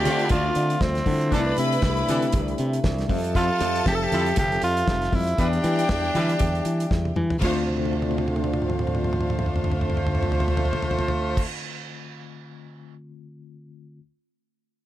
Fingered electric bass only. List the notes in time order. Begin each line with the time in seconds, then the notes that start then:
0.05 D3
0.31 D2
0.56 D3
0.81 D2
1.06 D3
1.32 C2
1.58 C3
1.83 C2
2.09 C3
2.34 C2
2.59 C3
2.84 C2
3.10 F2
3.61 F2
3.86 F1
4.12 F2
4.37 F1
4.62 F2
4.88 F1
5.13 F2
5.39 E2
5.64 E3
5.90 E2
6.15 E3
6.41 E2
6.65 E3
6.91 E2
7.16 E3
7.42 D2